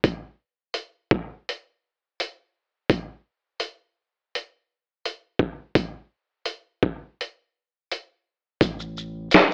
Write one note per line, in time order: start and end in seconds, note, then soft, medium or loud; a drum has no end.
0.04 kick loud
0.04 closed hi-hat medium
0.74 closed hi-hat medium
1.11 kick medium
1.49 closed hi-hat medium
2.20 closed hi-hat medium
2.90 kick loud
2.90 closed hi-hat medium
3.60 closed hi-hat medium
4.35 closed hi-hat medium
5.05 closed hi-hat medium
5.39 kick medium
5.75 kick loud
5.75 closed hi-hat medium
6.46 closed hi-hat medium
6.83 kick medium
7.21 closed hi-hat medium
7.92 closed hi-hat medium
8.61 9.29 A1 medium
8.61 kick loud
8.61 closed hi-hat medium
8.61 shaker medium
8.79 shaker soft
8.97 shaker soft
9.31 snare loud
9.31 closed hi-hat medium
9.31 shaker medium